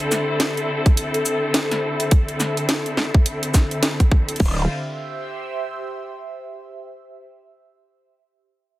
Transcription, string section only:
0.00 4.36 D3 medium
0.00 4.36 C4 medium
0.00 4.36 E4 medium
0.00 4.39 A4 medium
4.40 4.67 D3 medium
4.40 4.67 C4 medium
4.40 4.67 E4 medium
4.40 4.67 F4 medium

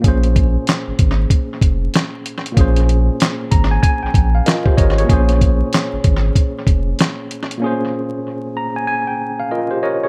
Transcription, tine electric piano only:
0.00 2.50 A#2 medium
0.00 2.52 A#3 medium
0.00 2.53 C#4 medium
0.06 2.54 G#4 medium
0.06 2.55 C5 medium
2.52 4.40 A#2 medium
2.52 4.41 A#3 medium
2.56 4.42 C#4 medium
2.56 4.44 G#4 medium
2.61 4.45 C5 medium
3.51 3.69 A#5 medium
3.71 3.81 G#5 medium
3.83 4.01 G#5 medium
4.03 4.32 G5 medium
4.35 4.46 F5 medium
4.46 4.65 F4 medium
4.46 4.65 A#4 medium
4.46 4.76 D#5 medium
4.66 4.78 G4 medium
4.66 4.77 C5 medium
4.77 4.96 A#4 medium
4.77 4.97 C#5 medium
4.77 4.96 D#5 medium
4.98 5.10 G#4 medium
4.98 5.28 C#5 medium
5.04 7.56 A#2 medium
5.04 7.57 A#3 medium
5.09 7.58 C#4 medium
5.09 7.59 G#4 medium
5.13 7.60 C5 medium
7.57 9.45 A#2 medium
7.57 9.47 A#3 medium
7.62 9.48 C#4 medium
7.62 9.49 G#4 medium
7.66 9.50 C5 medium
8.57 8.75 A#5 medium
8.76 8.86 G#5 medium
8.87 9.06 G#5 medium
9.07 9.37 G5 medium
9.39 9.51 F5 medium
9.51 9.70 F4 medium
9.51 9.70 A#4 medium
9.51 9.81 D#5 medium
9.71 9.83 G4 medium
9.71 9.83 C5 medium
9.83 10.02 A#4 medium
9.83 10.02 C#5 medium
9.83 10.01 D#5 medium
10.03 10.09 G#4 medium
10.03 10.09 C#5 medium

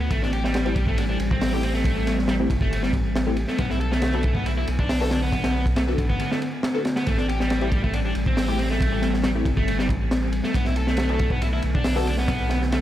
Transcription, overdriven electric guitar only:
0.01 0.10 B3 medium
0.11 0.21 A3 loud
0.22 0.30 D4 medium
0.33 0.43 G4 medium
0.44 0.86 G3 medium
0.88 0.97 A3 medium
0.98 1.03 D4 medium
1.09 1.17 D4 medium
1.31 1.52 C4 loud
1.53 1.63 G4 medium
1.63 1.71 C4 medium
1.75 2.17 A3 medium
2.29 2.33 G3 medium
2.62 2.82 A3 medium
2.84 2.91 G3 medium
3.49 3.58 A3 medium
3.59 3.69 B3 loud
3.70 3.78 E4 medium
3.80 3.91 A4 loud
3.91 4.34 A3 medium
4.35 4.45 B3 medium
4.46 4.51 E4 medium
4.58 4.65 E4 medium
4.79 5.00 D4 loud
5.01 5.11 A4 medium
5.12 5.19 D4 medium
5.23 5.65 B3 medium
5.77 5.81 A3 medium
6.10 6.30 B3 medium
6.31 6.39 A3 medium
6.96 7.06 B3 medium
7.07 7.17 A3 medium
7.18 7.26 D4 medium
7.29 7.39 G4 loud
7.40 7.82 G3 medium
7.83 7.93 A3 medium
7.94 7.99 D4 medium
8.05 8.13 D4 medium
8.27 8.48 C4 loud
8.49 8.59 G4 medium
8.59 8.67 C4 medium
8.70 9.13 A3 medium
9.25 9.29 G3 medium
9.57 9.78 A3 medium
9.79 9.86 G3 medium
10.44 10.54 A3 medium
10.55 10.65 B3 loud
10.66 10.74 E4 medium
10.77 10.87 A4 loud
10.88 11.30 A3 medium
11.31 11.41 B3 medium
11.42 11.47 E4 medium
11.53 11.61 E4 medium
11.75 11.95 D4 loud
11.97 12.07 A4 medium
12.07 12.15 D4 medium
12.19 12.61 B3 medium
12.72 12.77 A3 medium

